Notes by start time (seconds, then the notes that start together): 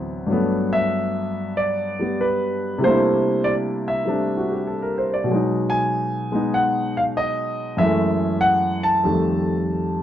Already playing: D2 A2 E3 F#3 B3 C4
0.27 G2 F#3 A3
0.32 B3
0.73 E5
1.57 D5
2.00 G3 B3
2.21 B4
2.78 C3 G3
2.83 A3 A#3 C5
2.87 D4 E4
3.44 D5
3.88 E5
4.05 G3 A3 C4 D4
4.37 F#4
4.52 G4
4.67 A4
4.82 A#4
4.98 C5
5.14 D5
5.24 B2 F#3
5.31 G#3 D#4
5.70 G#5
6.32 G#3 B3 D#4
6.54 F#5
6.97 F5
7.17 D#5
7.77 F#2 E3 G#3 E5
7.82 A3
8.41 F#5
8.83 A5
9.04 F2 D#3 G3 A3